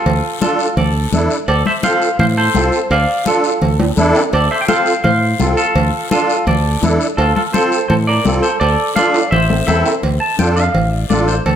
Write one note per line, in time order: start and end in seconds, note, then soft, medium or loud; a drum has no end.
0.00 0.38 F4 medium
0.00 0.38 A4 medium
0.06 0.20 D2 medium
0.06 cowbell loud
0.06 high conga soft
0.06 low conga medium
0.06 long guiro medium
0.41 0.66 D4 medium
0.41 0.66 F4 medium
0.41 0.75 F4 medium
0.41 0.67 A4 medium
0.41 0.75 A4 medium
0.41 high conga medium
0.41 short guiro medium
0.59 short guiro medium
0.77 1.05 D2 medium
0.77 1.11 A4 medium
0.77 1.11 D5 medium
0.77 cowbell medium
0.77 high conga soft
0.77 low conga medium
0.77 long guiro medium
1.12 1.27 E2 loud
1.12 1.37 D4 medium
1.12 1.37 E4 medium
1.12 1.38 A4 medium
1.12 high conga medium
1.12 low conga medium
1.12 short guiro medium
1.31 short guiro medium
1.48 1.62 D2 medium
1.48 1.65 A4 medium
1.48 1.66 D5 loud
1.48 cowbell loud
1.48 high conga soft
1.48 long guiro medium
1.66 1.71 C5 medium
1.66 1.72 E5 medium
1.66 high conga medium
1.83 2.08 C4 medium
1.83 2.09 F4 medium
1.83 2.09 A4 medium
1.83 2.17 C5 medium
1.83 2.17 F5 loud
1.83 high conga medium
1.83 short guiro medium
2.02 short guiro medium
2.19 2.48 A2 medium
2.19 2.25 C5 medium
2.19 2.25 F5 medium
2.19 cowbell medium
2.19 high conga soft
2.19 low conga medium
2.19 long guiro medium
2.37 2.87 A4 medium
2.37 2.87 C5 loud
2.54 2.69 C2 loud
2.54 2.79 C4 medium
2.54 2.80 F4 medium
2.54 2.80 A4 medium
2.54 high conga medium
2.54 low timbale medium
2.54 short guiro medium
2.72 short guiro medium
2.90 3.05 D2 loud
2.90 3.24 D5 medium
2.90 3.24 F5 loud
2.90 cowbell loud
2.90 high conga soft
2.90 long guiro medium
3.25 3.51 D4 medium
3.25 3.51 F4 medium
3.25 3.60 F4 medium
3.25 3.51 A4 medium
3.25 3.76 A4 medium
3.25 high conga medium
3.25 short guiro medium
3.44 short guiro medium
3.61 3.90 D2 medium
3.61 cowbell medium
3.61 high conga soft
3.61 low conga medium
3.61 long guiro medium
3.80 high conga medium
3.80 high timbale medium
3.97 4.12 E2 medium
3.97 4.22 D4 medium
3.97 4.22 E4 medium
3.97 4.22 A4 loud
3.97 high conga medium
3.97 short guiro medium
4.15 low timbale loud
4.15 short guiro medium
4.33 4.47 D2 loud
4.33 4.50 A4 medium
4.33 4.50 D5 loud
4.33 cowbell loud
4.33 high conga soft
4.33 long guiro medium
4.51 4.61 C5 medium
4.51 4.61 E5 loud
4.61 4.68 G5 medium
4.68 4.93 C4 medium
4.68 4.94 F4 medium
4.68 4.94 A4 medium
4.68 5.02 C5 medium
4.68 5.03 F5 loud
4.68 high conga medium
4.68 short guiro medium
4.86 short guiro medium
5.04 5.33 A2 medium
5.04 5.54 C5 medium
5.04 5.54 F5 loud
5.04 cowbell medium
5.04 high conga soft
5.04 low conga medium
5.04 long guiro medium
5.39 5.54 C2 loud
5.39 5.65 C4 medium
5.39 5.65 F4 medium
5.39 5.65 A4 medium
5.39 high conga medium
5.39 low timbale medium
5.39 short guiro medium
5.57 6.08 F4 medium
5.57 6.07 A4 medium
5.57 short guiro medium
5.75 5.90 D2 loud
5.75 cowbell medium
5.75 high conga soft
5.75 low conga medium
5.75 long guiro medium
6.11 6.36 D4 medium
6.11 6.36 F4 medium
6.11 6.45 F4 medium
6.11 6.36 A4 medium
6.11 6.47 A4 medium
6.11 high conga medium
6.11 short guiro medium
6.30 short guiro medium
6.47 6.75 D2 loud
6.47 6.81 A4 medium
6.47 6.80 D5 medium
6.47 cowbell medium
6.47 high conga soft
6.47 low conga medium
6.47 long guiro medium
6.82 6.97 E2 loud
6.82 7.07 D4 medium
6.82 7.07 E4 medium
6.82 7.07 A4 medium
6.82 high conga medium
6.82 short guiro medium
7.01 short guiro medium
7.17 7.32 D2 loud
7.17 7.35 F4 medium
7.17 7.34 A4 medium
7.17 cowbell loud
7.17 high conga soft
7.17 long guiro medium
7.36 7.42 F4 medium
7.36 7.41 A4 medium
7.36 high conga medium
7.53 7.79 C4 medium
7.53 7.79 F4 medium
7.53 7.79 A4 medium
7.53 7.88 A4 medium
7.53 7.87 C5 medium
7.53 high conga medium
7.53 short guiro medium
7.72 short guiro medium
7.88 8.18 A2 medium
7.88 7.95 A4 medium
7.88 7.93 C5 medium
7.88 cowbell medium
7.88 high conga soft
7.88 low conga medium
7.88 long guiro medium
8.07 8.41 A#4 medium
8.07 8.41 D5 loud
8.24 8.40 C2 loud
8.24 8.50 C4 medium
8.24 8.50 F4 medium
8.24 8.50 A4 medium
8.24 high conga medium
8.24 low timbale medium
8.24 short guiro medium
8.42 8.60 A4 medium
8.42 8.59 C5 medium
8.42 short guiro medium
8.60 8.75 D2 loud
8.60 8.94 A4 medium
8.60 8.93 D5 loud
8.60 cowbell loud
8.60 high conga soft
8.60 long guiro medium
8.95 9.21 D4 medium
8.95 9.21 F4 medium
8.95 9.21 A4 medium
8.95 9.30 D5 medium
8.95 9.31 F5 loud
8.95 high conga medium
8.95 short guiro medium
9.14 high timbale medium
9.14 short guiro medium
9.31 9.61 A1 medium
9.31 9.66 C5 medium
9.31 9.65 E5 loud
9.31 cowbell medium
9.31 high conga soft
9.31 low conga medium
9.31 long guiro medium
9.50 high conga medium
9.50 low timbale medium
9.67 9.82 E2 loud
9.67 9.92 C4 medium
9.67 9.92 E4 medium
9.67 9.92 A4 medium
9.67 9.93 C5 medium
9.67 9.92 E5 medium
9.67 high conga medium
9.67 low timbale medium
9.67 short guiro medium
9.86 low timbale loud
9.86 short guiro medium
10.03 10.18 D2 loud
10.03 cowbell medium
10.03 high conga soft
10.03 low conga medium
10.03 long guiro medium
10.20 10.38 A5 medium
10.38 10.68 F2 medium
10.38 10.64 D4 medium
10.38 10.64 F4 medium
10.38 10.64 A4 medium
10.38 10.56 G5 medium
10.38 high conga medium
10.38 short guiro medium
10.56 10.95 F5 medium
10.56 short guiro medium
10.74 11.03 A1 loud
10.74 cowbell medium
10.74 high conga soft
10.74 low conga medium
10.74 long guiro medium
10.95 11.08 D5 medium
11.10 11.39 A1 medium
11.10 11.35 D4 medium
11.10 11.35 F4 medium
11.10 11.35 A4 medium
11.10 11.27 D5 medium
11.10 high conga medium
11.10 low timbale medium
11.10 short guiro medium
11.28 11.45 C5 medium
11.28 short guiro medium
11.46 11.56 D2 medium
11.46 11.56 A4 medium
11.46 cowbell loud
11.46 high conga soft
11.46 low conga medium
11.46 long guiro medium